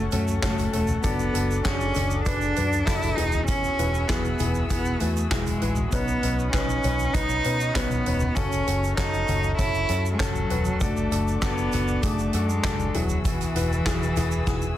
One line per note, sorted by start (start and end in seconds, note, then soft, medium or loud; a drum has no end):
0.00 1.06 C#3 medium
0.00 0.12 C#4 medium
0.00 0.12 F#4 medium
0.00 0.12 A4 loud
0.00 3.14 A4 medium
0.00 1.01 C#5 medium
0.00 3.14 F#5 medium
0.00 1.00 C#6 medium
0.11 0.38 F#2 medium
0.11 0.40 A3 medium
0.11 0.38 C#4 medium
0.11 0.38 F#4 medium
0.11 0.38 A4 medium
0.11 closed hi-hat medium
0.11 floor tom medium
0.11 shaker medium
0.28 shaker medium
0.42 0.68 F#1 loud
0.42 0.71 A3 medium
0.42 0.68 C#4 loud
0.42 0.68 F#4 medium
0.42 0.68 A4 loud
0.42 kick loud
0.42 snare loud
0.42 clap medium
0.42 closed hi-hat medium
0.42 shaker medium
0.58 closed hi-hat soft
0.58 floor tom medium
0.58 shaker soft
0.73 0.99 E1 medium
0.73 1.02 A3 medium
0.73 0.98 C#4 medium
0.73 0.99 F#4 medium
0.73 0.99 A4 medium
0.73 closed hi-hat medium
0.87 floor tom medium
0.87 shaker soft
1.02 1.29 F#1 medium
1.02 1.91 F#3 medium
1.02 1.60 B3 loud
1.02 1.29 D4 medium
1.02 1.29 F#4 medium
1.02 1.29 A4 medium
1.02 3.16 D6 medium
1.02 kick loud
1.02 closed hi-hat medium
1.02 shaker medium
1.19 shaker soft
1.34 1.60 F#1 medium
1.34 1.60 D4 medium
1.34 1.60 F#4 medium
1.34 1.60 A4 medium
1.34 closed hi-hat medium
1.34 shaker soft
1.51 shaker soft
1.64 1.90 F#1 loud
1.64 2.21 C#4 loud
1.64 1.90 D4 medium
1.64 1.90 F#4 medium
1.64 1.90 G#4 loud
1.64 kick loud
1.64 snare loud
1.64 clap medium
1.64 closed hi-hat medium
1.64 shaker medium
1.81 shaker soft
1.95 2.21 F#1 medium
1.95 2.21 D4 medium
1.95 2.21 F#4 medium
1.95 2.21 A4 medium
1.95 snare soft
1.95 closed hi-hat medium
1.95 floor tom medium
1.95 shaker soft
2.10 shaker soft
2.24 2.51 F#1 medium
2.24 2.87 D4 loud
2.24 2.51 D4 medium
2.24 2.51 F#4 medium
2.24 2.51 B4 medium
2.24 kick loud
2.24 closed hi-hat medium
2.24 shaker medium
2.41 shaker soft
2.56 2.82 F#2 medium
2.56 2.82 D4 medium
2.56 2.82 F#4 medium
2.56 2.82 B4 medium
2.56 closed hi-hat medium
2.56 floor tom medium
2.56 shaker medium
2.72 shaker medium
2.85 3.12 F#1 medium
2.85 3.12 D4 medium
2.85 3.17 E4 loud
2.85 3.12 F#4 medium
2.85 3.12 A4 loud
2.85 kick loud
2.85 snare loud
2.85 clap medium
2.85 closed hi-hat medium
2.85 shaker medium
3.02 closed hi-hat soft
3.02 floor tom medium
3.02 shaker soft
3.15 3.68 E1 medium
3.15 4.05 B2 medium
3.15 3.68 E3 medium
3.15 3.46 D#4 loud
3.15 3.68 F#4 medium
3.15 10.77 F#4 medium
3.15 3.68 G#4 medium
3.15 5.90 B4 medium
3.15 5.90 G#5 medium
3.15 5.90 E6 medium
3.15 closed hi-hat medium
3.32 floor tom medium
3.32 shaker medium
3.46 4.09 C#4 loud
3.46 kick loud
3.46 closed hi-hat medium
3.46 shaker medium
3.64 shaker soft
3.79 4.04 E1 medium
3.79 4.04 E4 medium
3.79 4.04 F#4 medium
3.79 4.04 B4 medium
3.79 closed hi-hat medium
3.79 shaker soft
3.94 shaker soft
4.08 4.34 E1 loud
4.08 4.68 B3 medium
4.08 4.34 E4 medium
4.08 4.35 F#4 medium
4.08 4.35 G#4 loud
4.08 kick loud
4.08 snare loud
4.08 clap medium
4.08 closed hi-hat medium
4.08 shaker medium
4.25 shaker soft
4.39 4.65 E1 medium
4.39 4.65 E4 medium
4.39 4.65 F#4 medium
4.39 4.65 G#4 medium
4.39 closed hi-hat medium
4.39 floor tom medium
4.39 shaker soft
4.55 shaker soft
4.69 4.95 E1 loud
4.69 5.01 B3 loud
4.69 4.96 E4 medium
4.69 4.96 F#4 medium
4.69 4.96 G#4 medium
4.69 kick loud
4.69 closed hi-hat loud
4.69 shaker medium
4.85 shaker soft
4.99 5.26 E2 medium
4.99 5.30 A3 medium
4.99 5.26 E4 medium
4.99 5.26 F#4 medium
4.99 5.26 B4 medium
4.99 closed hi-hat medium
4.99 shaker soft
5.17 shaker medium
5.30 5.57 E1 medium
5.30 5.88 G#3 medium
5.30 5.56 E4 loud
5.30 5.56 F#4 medium
5.30 5.57 G#4 loud
5.30 kick loud
5.30 snare loud
5.30 clap medium
5.30 closed hi-hat loud
5.30 shaker medium
5.46 closed hi-hat soft
5.46 floor tom medium
5.46 shaker soft
5.61 5.87 A1 medium
5.61 5.87 E4 medium
5.61 5.87 F#4 medium
5.61 5.87 B4 medium
5.61 closed hi-hat medium
5.76 floor tom medium
5.76 shaker medium
5.91 6.18 B1 loud
5.91 6.49 B3 loud
5.91 6.18 C#4 medium
5.91 6.18 D#4 medium
5.91 6.18 B4 medium
5.91 10.77 C#5 medium
5.91 8.34 B5 medium
5.91 8.34 D#6 medium
5.91 kick loud
5.91 closed hi-hat medium
5.91 shaker medium
6.08 shaker soft
6.23 6.48 B1 loud
6.23 6.48 C#4 medium
6.23 6.48 D#4 medium
6.23 6.48 B4 medium
6.23 closed hi-hat medium
6.23 shaker soft
6.39 shaker soft
6.52 6.79 B1 medium
6.52 7.15 C#4 loud
6.52 6.79 C#4 medium
6.52 6.79 D#4 medium
6.52 6.79 B4 loud
6.52 kick loud
6.52 snare loud
6.52 clap medium
6.52 closed hi-hat medium
6.52 shaker medium
6.69 shaker soft
6.83 7.09 B1 medium
6.83 7.09 C#4 medium
6.83 7.10 D#4 medium
6.83 7.10 C#5 medium
6.83 closed hi-hat medium
6.83 floor tom medium
6.83 shaker soft
6.99 shaker soft
7.14 7.40 B1 medium
7.14 7.40 C#4 medium
7.14 7.76 D#4 loud
7.14 7.40 D#4 medium
7.14 7.40 B4 medium
7.14 kick loud
7.14 closed hi-hat medium
7.14 shaker medium
7.29 shaker soft
7.44 7.70 B2 medium
7.44 7.70 C#4 medium
7.44 7.70 D#4 medium
7.44 7.70 B4 medium
7.44 closed hi-hat medium
7.44 shaker medium
7.60 shaker medium
7.74 8.01 B1 medium
7.74 8.37 B3 loud
7.74 8.01 C#4 medium
7.74 8.01 D#4 medium
7.74 8.01 B4 loud
7.74 kick loud
7.74 snare loud
7.74 clap medium
7.74 closed hi-hat loud
7.74 shaker medium
7.91 floor tom medium
7.91 shaker soft
8.06 8.32 E1 medium
8.06 8.32 C#4 medium
8.06 8.32 D#4 medium
8.06 8.32 B4 medium
8.06 closed hi-hat medium
8.20 floor tom medium
8.20 shaker medium
8.35 8.62 F#1 medium
8.35 9.24 C#3 medium
8.35 8.96 C#4 loud
8.35 8.62 C#4 medium
8.35 8.62 F#4 medium
8.35 8.62 A4 loud
8.35 12.90 A5 medium
8.35 10.78 C#6 medium
8.35 kick loud
8.35 closed hi-hat medium
8.35 shaker medium
8.52 closed hi-hat soft
8.52 shaker soft
8.67 8.93 F#1 loud
8.67 8.92 C#4 medium
8.67 8.92 F#4 medium
8.67 8.92 A4 medium
8.67 closed hi-hat medium
8.67 shaker soft
8.84 shaker soft
8.96 9.23 F#1 loud
8.96 9.23 C#4 medium
8.96 9.54 D#4 medium
8.96 9.23 F#4 medium
8.96 9.23 A4 loud
8.96 kick loud
8.96 snare loud
8.96 clap medium
8.96 closed hi-hat medium
8.96 shaker medium
9.14 shaker soft
9.28 9.54 F#1 loud
9.28 9.54 C#4 medium
9.28 9.54 F#4 medium
9.28 9.54 A4 medium
9.28 closed hi-hat medium
9.28 floor tom medium
9.28 shaker soft
9.43 shaker soft
9.57 9.84 F#1 medium
9.57 9.84 C#4 medium
9.57 10.08 E4 loud
9.57 9.84 F#4 medium
9.57 9.84 A4 medium
9.57 kick loud
9.57 closed hi-hat medium
9.57 shaker medium
9.74 shaker soft
9.89 10.14 F#2 loud
9.89 10.15 C#4 medium
9.89 10.15 F#4 medium
9.89 10.15 A4 medium
9.89 closed hi-hat medium
9.89 shaker medium
10.06 shaker medium
10.13 10.20 G#3 medium
10.18 10.45 F#1 medium
10.18 10.81 F#3 medium
10.18 10.45 C#4 loud
10.18 10.45 F#4 medium
10.18 10.45 A4 loud
10.18 kick loud
10.18 snare loud
10.18 clap medium
10.18 closed hi-hat medium
10.18 shaker medium
10.35 floor tom medium
10.35 shaker soft
10.50 10.76 E1 medium
10.50 10.76 C#4 medium
10.50 10.76 F#4 medium
10.50 10.76 B4 medium
10.50 closed hi-hat medium
10.65 floor tom medium
10.65 shaker medium
10.79 11.06 F#1 loud
10.79 11.68 F#3 medium
10.79 11.41 A3 loud
10.79 11.06 D4 medium
10.79 14.78 F#4 medium
10.79 11.06 F#4 medium
10.79 11.06 A4 loud
10.79 12.92 D5 medium
10.79 12.92 D6 medium
10.79 kick loud
10.79 closed hi-hat medium
10.79 shaker medium
10.97 shaker soft
11.11 11.36 F#1 medium
11.11 11.37 D4 medium
11.11 11.37 F#4 medium
11.11 11.37 A4 medium
11.11 closed hi-hat medium
11.11 shaker soft
11.28 shaker soft
11.41 11.67 F#1 medium
11.41 12.04 B3 loud
11.41 11.67 D4 loud
11.41 11.67 F#4 medium
11.41 11.68 A4 loud
11.41 kick loud
11.41 snare loud
11.41 clap medium
11.41 closed hi-hat medium
11.41 shaker medium
11.58 shaker soft
11.72 11.97 F#1 loud
11.72 11.98 D4 medium
11.72 11.98 F#4 medium
11.72 11.98 A4 medium
11.72 snare soft
11.72 closed hi-hat medium
11.72 floor tom medium
11.72 shaker medium
11.88 shaker soft
12.02 12.28 F#1 loud
12.02 12.50 A3 medium
12.02 12.29 D4 medium
12.02 12.29 F#4 medium
12.02 12.29 G#4 medium
12.02 kick loud
12.02 closed hi-hat loud
12.02 shaker medium
12.18 shaker soft
12.33 12.59 F#2 medium
12.33 12.59 D4 medium
12.33 12.59 F#4 medium
12.33 12.59 A4 medium
12.33 closed hi-hat medium
12.33 shaker soft
12.49 12.96 G#3 loud
12.49 shaker medium
12.64 12.89 F#1 loud
12.64 12.89 D4 loud
12.64 12.90 F#4 medium
12.64 12.90 A4 loud
12.64 kick loud
12.64 snare loud
12.64 clap medium
12.64 closed hi-hat loud
12.64 shaker medium
12.79 floor tom medium
12.79 shaker soft
12.94 13.45 E1 medium
12.94 13.82 B2 medium
12.94 13.25 F#3 medium
12.94 13.45 E4 medium
12.94 13.45 F#4 medium
12.94 13.45 G#4 medium
12.94 14.78 B4 medium
12.94 14.78 G#5 medium
12.94 14.78 E6 medium
12.94 closed hi-hat medium
13.09 floor tom medium
13.09 shaker soft
13.25 14.78 E3 loud
13.25 kick loud
13.25 closed hi-hat medium
13.25 shaker medium
13.41 closed hi-hat soft
13.41 shaker soft
13.56 13.81 E1 medium
13.56 13.81 E4 medium
13.56 13.81 F#4 medium
13.56 13.81 B4 medium
13.56 closed hi-hat medium
13.56 shaker soft
13.72 shaker soft
13.86 14.11 E4 medium
13.86 14.11 F#4 medium
13.86 14.12 G#4 loud
13.86 kick loud
13.86 snare loud
13.86 clap medium
13.86 closed hi-hat medium
13.86 shaker medium
14.03 shaker soft
14.16 14.41 E1 loud
14.16 14.42 E4 medium
14.16 14.42 F#4 medium
14.16 14.42 G#4 medium
14.16 snare soft
14.16 closed hi-hat medium
14.16 floor tom medium
14.16 shaker soft
14.31 shaker soft
14.47 14.72 E1 medium
14.47 14.72 E4 medium
14.47 14.73 F#4 medium
14.47 14.73 G#4 medium
14.47 kick loud
14.47 snare medium
14.47 shaker medium
14.62 shaker soft